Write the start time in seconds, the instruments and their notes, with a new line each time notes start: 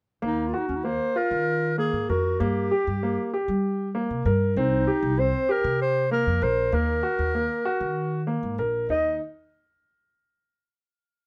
0.22 upright bass D#2, grand piano A#3
0.26 clarinet D#4
0.48 clarinet F4
0.54 grand piano F#4
0.58 clarinet D#4
0.68 upright bass D#2, clarinet C#4
0.76 clarinet D#4
0.85 grand piano A#3, clarinet C5
1.16 grand piano F4, clarinet A#4
1.31 upright bass D#3
1.78 grand piano A#3, clarinet G#4
1.93 upright bass G#2
2.09 upright bass F2, clarinet F#4, grand piano A#4
2.40 upright bass G2, grand piano A#3, clarinet G4
2.71 grand piano G4
2.87 upright bass G2
3.03 grand piano A#3
3.34 grand piano G4
3.48 upright bass G3
3.95 grand piano A#3
4.11 upright bass C3
4.25 upright bass G2, grand piano A#4
4.56 upright bass C2, grand piano C4, clarinet D#4
4.87 grand piano G4
5.03 upright bass C2
5.19 grand piano C4, clarinet C5
5.49 grand piano G4, clarinet A#4
5.64 upright bass C3
5.82 clarinet C5
6.11 grand piano A#3, clarinet A#4
6.27 upright bass F2
6.42 upright bass A#1, grand piano A#4, clarinet C5
6.72 upright bass D#2, grand piano A#3, clarinet A#4
7.03 grand piano F#4
7.19 upright bass D#2
7.35 grand piano A#3
7.65 grand piano F#4
7.81 upright bass D#3
8.27 grand piano A#3
8.43 upright bass G#2
8.58 upright bass A#1, grand piano A#4
8.89 upright bass D#2, grand piano D#4, clarinet D#5